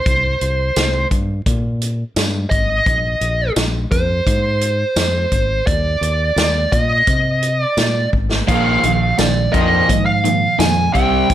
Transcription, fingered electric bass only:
0, 0, Header, 1, 2, 480
1, 0, Start_track
1, 0, Tempo, 702576
1, 39, Time_signature, 4, 2, 24, 8
1, 7749, End_track
2, 0, Start_track
2, 0, Title_t, "Fingered electric bass"
2, 0, Program_c, 0, 33
2, 42, Note_on_c, 0, 36, 84
2, 234, Note_off_c, 0, 36, 0
2, 283, Note_on_c, 0, 36, 73
2, 474, Note_off_c, 0, 36, 0
2, 521, Note_on_c, 0, 36, 95
2, 713, Note_off_c, 0, 36, 0
2, 761, Note_on_c, 0, 43, 69
2, 953, Note_off_c, 0, 43, 0
2, 999, Note_on_c, 0, 46, 80
2, 1385, Note_off_c, 0, 46, 0
2, 1478, Note_on_c, 0, 43, 91
2, 1670, Note_off_c, 0, 43, 0
2, 1716, Note_on_c, 0, 32, 81
2, 1909, Note_off_c, 0, 32, 0
2, 1956, Note_on_c, 0, 34, 83
2, 2149, Note_off_c, 0, 34, 0
2, 2194, Note_on_c, 0, 34, 87
2, 2388, Note_off_c, 0, 34, 0
2, 2433, Note_on_c, 0, 34, 91
2, 2627, Note_off_c, 0, 34, 0
2, 2674, Note_on_c, 0, 41, 79
2, 2868, Note_off_c, 0, 41, 0
2, 2913, Note_on_c, 0, 44, 82
2, 3300, Note_off_c, 0, 44, 0
2, 3389, Note_on_c, 0, 41, 73
2, 3585, Note_off_c, 0, 41, 0
2, 3634, Note_on_c, 0, 32, 80
2, 3828, Note_off_c, 0, 32, 0
2, 3874, Note_on_c, 0, 39, 83
2, 4068, Note_off_c, 0, 39, 0
2, 4107, Note_on_c, 0, 39, 73
2, 4304, Note_off_c, 0, 39, 0
2, 4347, Note_on_c, 0, 39, 98
2, 4544, Note_off_c, 0, 39, 0
2, 4592, Note_on_c, 0, 46, 75
2, 4786, Note_off_c, 0, 46, 0
2, 4833, Note_on_c, 0, 48, 81
2, 5220, Note_off_c, 0, 48, 0
2, 5308, Note_on_c, 0, 46, 78
2, 5504, Note_off_c, 0, 46, 0
2, 5553, Note_on_c, 0, 32, 84
2, 5747, Note_off_c, 0, 32, 0
2, 5796, Note_on_c, 0, 34, 85
2, 5989, Note_off_c, 0, 34, 0
2, 6036, Note_on_c, 0, 34, 76
2, 6229, Note_off_c, 0, 34, 0
2, 6277, Note_on_c, 0, 34, 91
2, 6470, Note_off_c, 0, 34, 0
2, 6519, Note_on_c, 0, 41, 70
2, 6711, Note_off_c, 0, 41, 0
2, 6756, Note_on_c, 0, 44, 79
2, 7143, Note_off_c, 0, 44, 0
2, 7234, Note_on_c, 0, 41, 81
2, 7428, Note_off_c, 0, 41, 0
2, 7481, Note_on_c, 0, 36, 83
2, 7673, Note_off_c, 0, 36, 0
2, 7721, Note_on_c, 0, 36, 85
2, 7749, Note_off_c, 0, 36, 0
2, 7749, End_track
0, 0, End_of_file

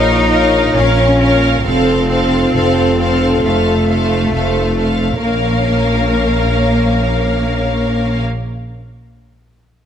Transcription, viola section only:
0, 0, Header, 1, 2, 480
1, 0, Start_track
1, 0, Key_signature, -5, "minor"
1, 0, Tempo, 896861
1, 878, Time_signature, 4, 2, 24, 8
1, 5275, End_track
2, 0, Start_track
2, 0, Title_t, "Viola section"
2, 0, Program_c, 0, 48
2, 0, Note_on_c, 0, 70, 41
2, 149, Note_off_c, 0, 70, 0
2, 156, Note_on_c, 0, 70, 41
2, 391, Note_off_c, 0, 70, 0
2, 397, Note_on_c, 0, 70, 42
2, 629, Note_off_c, 0, 70, 0
2, 635, Note_on_c, 0, 70, 43
2, 872, Note_off_c, 0, 70, 0
2, 877, Note_on_c, 0, 69, 47
2, 1105, Note_off_c, 0, 69, 0
2, 1111, Note_on_c, 0, 69, 41
2, 1342, Note_off_c, 0, 69, 0
2, 1349, Note_on_c, 0, 69, 45
2, 1588, Note_off_c, 0, 69, 0
2, 1595, Note_on_c, 0, 69, 38
2, 1831, Note_off_c, 0, 69, 0
2, 1837, Note_on_c, 0, 69, 40
2, 2072, Note_off_c, 0, 69, 0
2, 2079, Note_on_c, 0, 69, 35
2, 2311, Note_off_c, 0, 69, 0
2, 2318, Note_on_c, 0, 69, 31
2, 2540, Note_off_c, 0, 69, 0
2, 2547, Note_on_c, 0, 69, 24
2, 2786, Note_off_c, 0, 69, 0
2, 2789, Note_on_c, 0, 70, 31
2, 4390, Note_off_c, 0, 70, 0
2, 5275, End_track
0, 0, End_of_file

